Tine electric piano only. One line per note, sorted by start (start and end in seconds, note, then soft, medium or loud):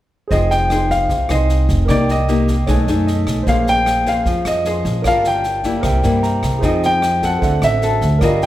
0.28 1.84 G#4 medium
0.28 1.85 C5 soft
0.28 1.86 D#5 soft
0.34 1.87 G5 medium
1.85 2.64 A#4 soft
1.85 2.66 D6 soft
1.90 2.67 D#5 soft
1.90 2.68 G5 medium
2.67 3.45 C#5 medium
2.67 3.06 D#5 soft
2.67 3.47 G#5 medium
3.07 3.44 D#5 soft
3.43 5.00 C5 medium
3.47 5.03 G#4 medium
3.47 5.02 F5 soft
5.02 5.80 A#4 soft
5.02 5.82 C#5 soft
5.02 5.83 F5 soft
5.08 5.84 A5 medium
5.81 6.60 A#4 medium
5.81 6.60 C5 medium
5.81 6.62 E5 soft
5.87 6.63 G5 medium
6.23 6.60 A#5 medium
6.59 7.38 G#4 medium
6.59 7.39 C5 soft
6.63 7.41 D#5 soft
6.63 7.42 G5 medium
7.38 8.18 A4 medium
7.38 8.19 C5 soft
7.43 8.20 E5 soft
7.43 8.21 F#5 medium
8.19 8.46 A#4 medium
8.19 8.46 C#5 soft
8.23 8.46 F5 soft
8.23 8.46 G5 soft